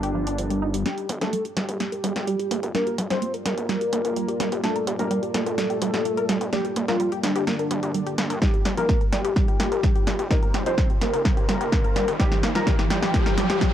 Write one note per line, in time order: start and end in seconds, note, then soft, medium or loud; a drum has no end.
0.00 0.83 G1 medium
0.00 0.82 G3 medium
0.00 0.76 D4 loud
0.00 0.82 F4 medium
0.00 0.82 G4 medium
0.00 1.62 G4 medium
0.00 0.11 G4 medium
0.00 0.82 A#4 medium
0.00 2.23 C5 medium
0.00 1.94 F5 medium
0.00 closed hi-hat soft
0.15 0.26 F3 loud
0.27 0.31 D4 medium
0.27 closed hi-hat medium
0.38 0.46 F3 medium
0.38 closed hi-hat medium
0.50 0.61 G3 medium
0.50 closed hi-hat soft
0.62 0.70 D#4 medium
0.74 0.84 G3 medium
0.74 closed hi-hat medium
0.86 0.94 G3 loud
0.86 1.18 G3 loud
0.86 13.73 G3 medium
0.86 1.18 A#3 medium
0.86 13.73 A#3 medium
0.86 1.18 D4 loud
0.86 9.66 F4 medium
0.86 1.08 G4 medium
0.86 8.38 G4 medium
0.86 8.38 D5 medium
0.86 snare soft
0.86 closed hi-hat soft
0.98 1.05 G4 medium
0.98 closed hi-hat soft
1.09 1.18 G1 medium
1.09 1.17 A#3 medium
1.09 open hi-hat loud
1.20 1.30 G1 medium
1.20 1.42 G3 medium
1.20 9.90 A#3 medium
1.20 1.42 A#3 medium
1.20 1.42 D4 medium
1.20 1.43 A4 medium
1.20 1.29 A#4 medium
1.20 snare soft
1.20 closed hi-hat soft
1.26 9.37 D5 medium
1.33 1.41 G3 loud
1.33 closed hi-hat soft
1.45 1.53 G4 medium
1.45 closed hi-hat soft
1.56 1.66 G1 medium
1.56 1.65 G3 loud
1.56 2.65 G4 loud
1.56 snare soft
1.56 open hi-hat loud
1.69 1.77 G1 medium
1.69 1.76 G4 medium
1.69 closed hi-hat soft
1.80 1.88 A#3 medium
1.80 snare medium
1.80 closed hi-hat soft
1.92 2.00 A#4 medium
1.92 closed hi-hat soft
2.04 2.13 G1 medium
2.04 2.12 G3 loud
2.04 open hi-hat loud
2.16 2.25 G1 medium
2.16 2.23 G4 medium
2.16 snare soft
2.16 closed hi-hat soft
2.27 2.35 G3 medium
2.27 closed hi-hat soft
2.39 2.47 G4 medium
2.39 closed hi-hat soft
2.51 2.60 G1 medium
2.51 2.59 A#3 medium
2.51 open hi-hat loud
2.63 2.72 G1 medium
2.63 2.71 A#4 medium
2.63 closed hi-hat soft
2.75 2.83 G3 loud
2.75 3.07 G3 loud
2.75 3.07 A#3 medium
2.75 3.07 D4 loud
2.75 2.97 A#4 loud
2.75 snare medium
2.75 closed hi-hat soft
2.87 2.94 G4 medium
2.87 closed hi-hat soft
2.98 3.07 G1 medium
2.98 3.06 G3 medium
2.98 open hi-hat loud
3.10 3.19 G1 medium
3.10 3.31 G3 medium
3.10 3.31 A#3 medium
3.10 3.31 D4 medium
3.10 3.18 G4 medium
3.10 3.32 C5 medium
3.10 snare soft
3.10 closed hi-hat soft
3.22 3.30 A#3 medium
3.22 closed hi-hat soft
3.34 3.42 A#4 medium
3.34 closed hi-hat soft
3.46 3.55 G1 loud
3.46 3.54 G3 loud
3.46 4.54 A#4 loud
3.46 snare medium
3.46 open hi-hat loud
3.58 3.66 G1 medium
3.58 3.65 G4 medium
3.58 closed hi-hat soft
3.69 3.77 G3 loud
3.69 snare medium
3.69 closed hi-hat soft
3.81 3.89 G4 medium
3.81 closed hi-hat soft
3.93 4.02 G1 loud
3.93 4.01 A#3 medium
3.93 open hi-hat loud
4.05 4.14 G1 medium
4.05 4.12 A#4 medium
4.05 closed hi-hat soft
4.16 4.24 G3 loud
4.16 closed hi-hat soft
4.28 4.36 G4 medium
4.28 closed hi-hat soft
4.40 4.49 G1 medium
4.40 4.48 G3 loud
4.40 snare medium
4.40 open hi-hat loud
4.52 4.61 G1 medium
4.52 4.60 G4 medium
4.52 open hi-hat medium
4.64 4.96 G3 loud
4.64 4.72 A#3 medium
4.64 4.96 A#3 medium
4.64 4.96 D4 loud
4.64 4.86 A4 loud
4.64 snare medium
4.64 closed hi-hat soft
4.76 4.83 A#4 medium
4.76 closed hi-hat soft
4.87 4.96 G1 medium
4.87 4.95 G3 loud
4.87 open hi-hat loud
4.99 5.08 G1 medium
4.99 5.20 G3 medium
4.99 5.20 A#3 medium
4.99 5.20 D4 medium
4.99 5.07 G4 medium
4.99 5.21 A#4 medium
4.99 closed hi-hat soft
5.11 5.19 G3 loud
5.11 closed hi-hat soft
5.23 5.31 G4 medium
5.23 closed hi-hat soft
5.34 5.44 G1 loud
5.34 5.43 A#3 medium
5.34 6.43 A4 loud
5.34 snare medium
5.34 open hi-hat loud
5.46 5.55 G1 medium
5.46 5.54 A#4 medium
5.46 closed hi-hat soft
5.58 5.66 G3 loud
5.58 snare medium
5.58 closed hi-hat soft
5.70 5.78 G4 medium
5.70 closed hi-hat soft
5.82 5.91 G1 loud
5.82 5.90 G3 loud
5.82 open hi-hat loud
5.94 6.03 G1 medium
5.94 6.01 G4 medium
5.94 snare medium
5.94 closed hi-hat soft
6.05 6.13 A#3 medium
6.05 closed hi-hat soft
6.17 6.25 A#4 medium
6.17 closed hi-hat soft
6.29 6.38 G1 medium
6.29 6.37 G3 loud
6.29 snare medium
6.29 open hi-hat loud
6.41 6.50 G1 medium
6.41 6.49 G4 medium
6.41 closed hi-hat soft
6.53 6.61 G3 loud
6.53 6.85 G3 loud
6.53 6.85 A#3 medium
6.53 6.85 D4 loud
6.53 6.75 G4 loud
6.53 snare medium
6.53 closed hi-hat soft
6.65 6.72 G4 medium
6.65 closed hi-hat soft
6.76 6.85 G1 medium
6.76 6.84 A#3 medium
6.76 open hi-hat loud
6.88 6.97 G1 medium
6.88 7.08 G3 medium
6.88 7.08 A#3 medium
6.88 7.08 D4 medium
6.88 7.10 F4 medium
6.88 6.96 A#4 medium
6.88 snare medium
6.88 closed hi-hat soft
7.00 7.08 G3 loud
7.00 closed hi-hat soft
7.12 7.20 G4 medium
7.12 closed hi-hat soft
7.23 7.33 G1 medium
7.23 7.31 G3 loud
7.23 8.32 D4 loud
7.23 snare medium
7.23 open hi-hat loud
7.36 7.44 G1 medium
7.36 7.43 G4 medium
7.36 closed hi-hat soft
7.47 7.55 A#3 medium
7.47 snare medium
7.47 closed hi-hat soft
7.59 7.67 A#4 medium
7.59 closed hi-hat soft
7.71 7.80 G1 loud
7.71 7.79 G3 medium
7.71 open hi-hat loud
7.83 7.92 D2 medium
7.83 7.90 G4 medium
7.83 closed hi-hat soft
7.94 8.02 G3 medium
7.94 closed hi-hat soft
8.06 8.14 G4 medium
8.06 closed hi-hat soft
8.18 8.27 G1 medium
8.18 8.26 A#3 medium
8.18 snare medium
8.18 open hi-hat loud
8.30 8.39 G2 medium
8.30 8.38 A#4 medium
8.30 open hi-hat medium
8.42 8.74 F3 loud
8.42 8.50 G3 loud
8.42 8.74 G3 medium
8.42 8.74 D#4 loud
8.42 13.73 D#4 medium
8.42 13.73 F4 medium
8.42 8.64 G4 loud
8.42 13.73 G4 medium
8.42 kick loud
8.42 snare medium
8.42 closed hi-hat soft
8.42 riser medium
8.54 8.61 G4 medium
8.54 closed hi-hat soft
8.65 8.74 G1 loud
8.65 8.73 G3 loud
8.65 13.73 C5 medium
8.65 snare medium
8.65 open hi-hat loud
8.77 8.86 G1 medium
8.77 8.97 F3 medium
8.77 8.97 G3 medium
8.77 8.97 D#4 medium
8.77 8.85 G4 medium
8.77 8.99 A#4 medium
8.77 closed hi-hat soft
8.89 8.97 A#3 medium
8.89 kick loud
8.89 snare medium
8.89 closed hi-hat soft
9.01 9.09 A#4 medium
9.01 closed hi-hat soft
9.12 9.22 G1 loud
9.12 9.20 G3 loud
9.12 10.21 G4 loud
9.12 snare medium
9.12 open hi-hat loud
9.25 9.33 G1 medium
9.25 9.32 G4 medium
9.25 closed hi-hat soft
9.36 9.44 G3 loud
9.36 kick loud
9.36 snare medium
9.36 closed hi-hat soft
9.48 9.56 G4 medium
9.48 closed hi-hat soft
9.60 9.69 G1 medium
9.60 9.68 A#3 medium
9.60 snare medium
9.60 open hi-hat loud
9.72 9.81 G1 medium
9.72 9.79 A#4 medium
9.72 closed hi-hat soft
9.83 9.91 G3 loud
9.83 kick loud
9.83 snare medium
9.83 closed hi-hat soft
9.95 10.03 G4 medium
9.95 13.73 F5 medium
9.95 closed hi-hat soft
10.07 10.16 G1 medium
10.07 10.15 G3 loud
10.07 snare medium
10.07 open hi-hat loud
10.19 10.28 G1 medium
10.19 10.27 G4 medium
10.19 closed hi-hat soft
10.30 10.63 F3 loud
10.30 10.63 G3 medium
10.30 10.39 A#3 medium
10.30 10.63 D#4 loud
10.30 10.52 A#4 loud
10.30 kick loud
10.30 snare medium
10.30 closed hi-hat soft
10.43 10.50 A#4 medium
10.43 closed hi-hat soft
10.54 10.63 G1 medium
10.54 10.62 G3 loud
10.54 snare medium
10.54 open hi-hat loud
10.66 10.75 G1 medium
10.66 10.86 F3 medium
10.66 10.86 G3 medium
10.66 10.86 D#4 medium
10.66 10.74 G4 medium
10.66 10.88 C5 loud
10.66 closed hi-hat soft
10.78 10.86 G3 loud
10.78 kick loud
10.78 snare medium
10.78 closed hi-hat soft
10.90 10.98 G4 medium
10.90 closed hi-hat soft
11.01 11.11 G1 loud
11.01 11.09 A#3 medium
11.01 12.10 A#4 loud
11.01 snare medium
11.01 open hi-hat loud
11.13 11.22 G1 medium
11.13 11.21 A#4 medium
11.13 closed hi-hat soft
11.25 11.33 G3 loud
11.25 kick loud
11.25 snare medium
11.25 closed hi-hat soft
11.37 11.45 G4 medium
11.37 closed hi-hat soft
11.49 11.58 G1 medium
11.49 11.57 G3 loud
11.49 snare medium
11.49 open hi-hat loud
11.61 11.70 G1 medium
11.61 11.68 G4 medium
11.61 closed hi-hat soft
11.72 11.80 A#3 medium
11.72 kick loud
11.72 snare medium
11.72 closed hi-hat soft
11.84 11.92 A#4 medium
11.84 closed hi-hat soft
11.96 12.05 G1 medium
11.96 12.04 G3 loud
11.96 snare medium
11.96 open hi-hat loud
12.08 12.17 G1 medium
12.08 12.16 G4 medium
12.08 open hi-hat medium
12.20 12.52 F3 loud
12.20 12.28 G3 loud
12.20 12.52 G3 medium
12.20 12.52 D#4 loud
12.20 12.41 G4 loud
12.20 kick loud
12.20 snare medium
12.20 closed hi-hat soft
12.32 12.39 G4 medium
12.32 snare medium
12.32 closed hi-hat soft
12.43 12.52 G1 loud
12.43 12.51 A#3 medium
12.43 snare medium
12.43 open hi-hat loud
12.55 12.64 G1 medium
12.55 12.75 F3 medium
12.55 12.75 G3 medium
12.55 12.75 D#4 medium
12.55 12.63 A#4 medium
12.55 12.77 A#4 medium
12.55 snare medium
12.55 closed hi-hat soft
12.67 12.75 G3 loud
12.67 kick loud
12.67 snare medium
12.67 closed hi-hat soft
12.79 12.87 G4 medium
12.79 snare medium
12.79 closed hi-hat soft
12.90 13.00 G1 medium
12.90 12.98 G3 loud
12.90 13.73 G4 loud
12.90 snare loud
12.90 open hi-hat loud
13.02 13.11 G1 medium
13.02 13.10 G4 medium
13.02 snare medium
13.02 closed hi-hat soft
13.14 13.22 A#3 medium
13.14 kick loud
13.14 snare loud
13.14 closed hi-hat soft
13.26 13.34 A#4 medium
13.26 snare medium
13.26 closed hi-hat soft
13.38 13.47 G1 loud
13.38 13.46 G3 loud
13.38 snare loud
13.38 open hi-hat loud
13.50 13.59 G1 medium
13.50 13.57 G4 medium
13.50 snare medium
13.50 closed hi-hat soft
13.61 13.69 G3 loud
13.61 kick loud
13.61 snare loud
13.61 closed hi-hat soft